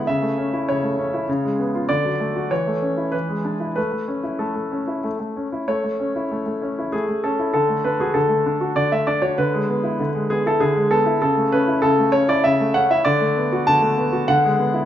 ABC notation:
X:1
M:3/4
L:1/16
Q:1/4=98
K:A
V:1 name="Grand piano"
e4 c6 z2 | d4 c4 B4 | B4 A4 z4 | c8 G2 A2 |
A2 B G A4 d e d c | B6 G A G2 A2 | A2 B2 A2 c d e2 f e | d4 a4 f4 |]
V:2 name="Grand piano"
C, A, C E C, A, C E C, G, B, ^E | D, F, A, F E, A, C E E, G, D E | A, A, C E A, A, C E A, A, C E | A, A, C E A, A, C E A, A, C E |
D, A, D F D, A, D F D, A, D F | D, G, B, E D, G, B, E D, G, B, E | C, A, C E C, A, C E C, A, C E | D, A, B, F D, A, B, F D, G, B, E |]